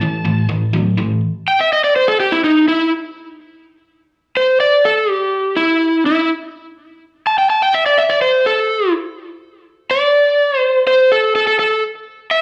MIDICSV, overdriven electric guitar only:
0, 0, Header, 1, 2, 480
1, 0, Start_track
1, 0, Key_signature, 0, "minor"
1, 0, Tempo, 481541
1, 1218, Time_signature, 4, 2, 24, 8
1, 12376, End_track
2, 0, Start_track
2, 0, Title_t, "Overdriven electric guitar"
2, 0, Program_c, 0, 29
2, 15, Note_on_c, 0, 45, 69
2, 23, Note_on_c, 0, 52, 73
2, 232, Note_off_c, 0, 45, 0
2, 237, Note_off_c, 0, 52, 0
2, 248, Note_on_c, 0, 45, 71
2, 253, Note_on_c, 0, 52, 80
2, 469, Note_off_c, 0, 45, 0
2, 471, Note_off_c, 0, 52, 0
2, 488, Note_on_c, 0, 45, 68
2, 488, Note_on_c, 0, 52, 79
2, 709, Note_off_c, 0, 45, 0
2, 709, Note_off_c, 0, 52, 0
2, 731, Note_on_c, 0, 45, 73
2, 734, Note_on_c, 0, 54, 82
2, 951, Note_off_c, 0, 45, 0
2, 952, Note_off_c, 0, 54, 0
2, 972, Note_on_c, 0, 45, 71
2, 979, Note_on_c, 0, 52, 81
2, 1191, Note_off_c, 0, 45, 0
2, 1194, Note_off_c, 0, 52, 0
2, 12376, End_track
0, 0, End_of_file